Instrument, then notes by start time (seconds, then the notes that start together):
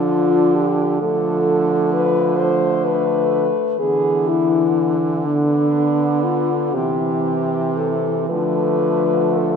french horn
Already playing: D3 F3 D4 F4
0.55 G4
1.01 D3 F3 A3 A4
1.93 B4
2.38 A3 C5
2.84 B4
3.79 D3 E3 B3 G#4
4.28 E4
5.24 D3 B3 D4
6.23 F4
6.74 C3 E3 C4 G4
7.77 A4
8.29 D3 F3 A3 B4
9.37 A4